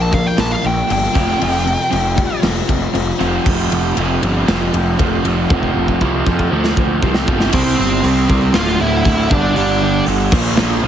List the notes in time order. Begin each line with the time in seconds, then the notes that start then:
Already playing: A#1 A#2 F3 A#3
0.02 A5
0.12 A#2 F3 D4 F5, kick, crash
0.27 G5
0.37 A#1 A#2 F3 F4 A5, snare, crash
0.52 F5
0.62 A#1 A#2 F3 D4, crash
0.67 G5
0.87 G1 A#2 F3 A#3, crash
0.92 G5
1.13 F1 F2 C3 F3, kick, crash
1.38 F1 F2 C3 F3, crash
1.64 F2 C3, crash
1.80 snare
1.90 F1 F2 C3 F3, crash
2.16 F2 C3 G3, kick, crash
2.42 F1 F2 C3 C4, snare, crash
2.67 F1 F2 C3 G3, kick, crash
2.94 F1 F2 C3 F3, crash
3.19 F1 F2 C3 F3 G3, crash
3.44 F1 F2 C3 F3, kick, crash
3.71 F1, ride
3.96 F1 F2 C3 F3, ride
4.22 G1 F2 C3 F3, ride
4.47 F1 F2 C3 F3, snare, ride
4.74 F1, ride
4.98 F1 F2 C3 F3, kick, ride
5.24 F1 F2 C3 F3, ride
5.49 F1 F2 C3 F3, kick
5.63 kick
5.76 F1
5.88 kick
6.00 C2 F2 C3 F3, kick
6.26 F2 C3 F3, kick
6.39 kick
6.51 D2 F2 C3 F3
6.64 snare
6.77 D2, kick
7.02 C2 F2 C3 F3, kick
7.14 snare
7.27 G1 F2 C3 F3, kick
7.40 snare
7.52 C2 C3 G3 C4 C5, kick, crash
7.77 G1 C3 G3 C4
8.02 C2 C3 G3 C4, open hi-hat
8.27 C2 C3 G3 C4, kick
8.53 D1 D2 A2 D3 F4 F5, snare, open hi-hat
8.79 D1 D2 A2 D3 E4 E5
9.05 D1 D2 A2 D3, kick, open hi-hat
9.30 G1 G2 D3 G3 D4 D5, kick
9.55 G1 G2 D3 G3 D4 D5, open hi-hat
9.81 G2 D3 G3
10.06 G1 G2 D3 G3, open hi-hat
10.32 A#1 A#2 F3 A#3, kick, crash
10.57 A#1 A#2 F3 A#3, snare
10.83 A#1 A#2 F3 A#3